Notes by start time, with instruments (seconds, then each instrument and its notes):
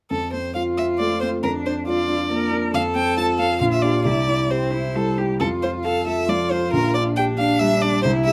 0.11 grand piano F2, violin A4
0.33 grand piano C4, violin C5
0.55 grand piano F4, cello F4, violin F5
0.78 grand piano C4, violin E5
0.99 grand piano A3, violin D5
1.21 grand piano C4, violin C5
1.43 grand piano F2, cello D4, violin A#4
1.66 grand piano D4, violin C5
1.87 cello F4, grand piano F4, violin D5
2.08 grand piano D4
2.30 grand piano A#3, cello A#4
2.51 grand piano D4
2.74 grand piano F2, cello A4, violin F5
2.95 grand piano C4, violin G5
3.17 grand piano F4, violin A5
3.39 grand piano C4, violin F5
3.60 grand piano A#1, cello F4, violin F5
3.73 violin E5
3.82 grand piano D4 G4, violin D5
4.05 grand piano C2, cello E4, violin D5
4.28 grand piano E4
4.50 cello C4, grand piano G4, violin C5
4.73 grand piano E4, cello E4
4.95 grand piano G3, cello A4
5.18 grand piano E4, cello G4
5.40 grand piano F2, cello F4, violin A4
5.62 grand piano F4, violin C5
5.84 grand piano A4, cello A4, violin F5
6.06 grand piano F4, violin E5
6.28 grand piano F3, cello F4, violin D5
6.51 grand piano F4, violin C5
6.73 grand piano A#1, violin A#4
6.95 grand piano D4, violin D5
7.16 cello D4, grand piano G4, violin G5
7.38 grand piano D4, violin F5
7.59 grand piano G3, violin E5
7.82 grand piano D4, violin D5
8.03 grand piano C2, cello E4, violin C5
8.25 grand piano E4 G4, violin E5